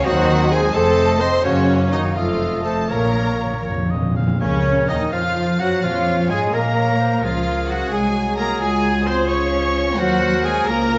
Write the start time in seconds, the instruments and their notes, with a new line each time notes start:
0.05 double bass section D#2, cello section D#3, french horn section F#3, bassoon C4, violin section F#4 F#5, viola section F#4, clarinet F#4, flute C5, oboe D#5
0.50 french horn section G#3, viola section G#4, clarinet G#4, violin section G#4 G#5, flute C5
0.73 double bass section F1, cello section F2, french horn section A3, bassoon C4, violin section A4 A5, viola section A4, clarinet A4, flute C5, oboe D#5
1.20 french horn section C4, clarinet C5, violin section C5 C6, viola section C5, flute D#5
1.44 double bass section F#1, cello section F#2, french horn section C#3, bassoon A#3, violin section C#4 C#5, clarinet C#4, viola section C#4, flute F#4, oboe C#5
1.91 french horn section D#3, violin section D#4 D#5, viola section D#4, clarinet D#4, flute F#4
2.15 double bass section F1, cello section F2, french horn section F3, bassoon A3, violin section F4 F5, clarinet F4, viola section F4, flute A4, oboe D#5
2.64 french horn section A3, violin section A4 A5, viola section A4, clarinet A4, flute C5
2.88 double bass section A#1, timpani A#2, cello section A#2, french horn section A#3, bassoon A#3, violin section A#4 A#5, viola section A#4, clarinet A#4, flute C#5, oboe C#5
3.05 timpani A#2
3.21 timpani A#2
3.29 timpani A#2
3.37 timpani A#2
3.46 timpani A#2
3.54 timpani A#2
3.62 double bass section F1, timpani A#2, oboe C#5
3.66 cello section F2, timpani A#2
3.77 timpani A#2
3.85 timpani A#2
3.91 timpani A#2, oboe D#5
4.02 timpani A#2
4.11 timpani A#2
4.16 timpani A#2, oboe F5
4.27 timpani A#2
4.40 double bass section C#2, french horn section C#3, bassoon C#3, cello section C#3, violin section C#4 C#5, trumpet C#4, viola section C#4, clarinet A#4, flute C#5, oboe C#5
4.88 double bass section D#2, bassoon D#3, french horn section D#3, cello section D#3, violin section D#4 D#5, trumpet D#4, viola section D#4, flute D#5, oboe D#5
5.12 double bass section F2, bassoon F3, french horn section F3, cello section F3, violin section F4 F5, trumpet F4, viola section F4, clarinet C5, flute F5, oboe F5
5.59 double bass section F#2, french horn section F#3, cello section F#3, bassoon F#3, violin section F#4 F#5, viola section F#4, trumpet F#4, flute F#5, oboe F#5
5.82 double bass section F2, timpani A#2, french horn section F3, cello section F3, bassoon F3, violin section F4 F5, viola section F4, trumpet F4, clarinet C#5, flute F5, oboe F5
6.29 double bass section G#2, cello section G#3, bassoon G#3, french horn section G#3, violin section G#4 G#5, trumpet G#4, viola section G#4, flute G#5, oboe G#5
6.53 double bass section A#2, bassoon A#3, french horn section A#3, cello section A#3, violin section A#4 A#5, viola section A#4, trumpet A#4, clarinet D#5, oboe A#5, flute A#5
6.78 clarinet C#5
7.00 clarinet C5
7.23 double bass section C#2, cello section F3, bassoon F3, french horn section G#3 C#4, violin section F4 F5, viola section F4, trumpet F4, oboe G#4, clarinet A#4, flute F5
7.69 cello section F#3, violin section F#4 F#5, viola section F#4, trumpet F#4, flute F#5
7.92 double bass section C2, bassoon F#3, cello section G#3, french horn section F#4, violin section G#4 G#5, viola section G#4, clarinet G#4, trumpet G#4, flute G#5
8.37 cello section A#3, violin section A#4 A#5, trumpet A#4, viola section A#4, flute A#5
8.60 double bass section C#2, cello section G#3, french horn section F4, clarinet F4, violin section G#4 G#5, trumpet G#4, viola section G#4, flute G#5
9.06 cello section C4, violin section C5 C6, viola section C5, trumpet C5, flute C6
9.29 bassoon F3, cello section C#4, violin section C#5 C#6, viola section C#5, trumpet C#5, flute C#6
9.98 double bass section D#2, cello section F#3, bassoon F#3, french horn section A#3 F#4, violin section F#4 F#5, viola section F#4, trumpet F#4, oboe A#4, clarinet C5, flute F#5
10.44 cello section G#3, viola section G#4, trumpet G#4, violin section G#4 G#5, flute G#5
10.67 double bass section C#2, bassoon F3, cello section A#3, french horn section F4, viola section A#4, trumpet A#4, violin section A#4 A#5, clarinet A#4, flute A#5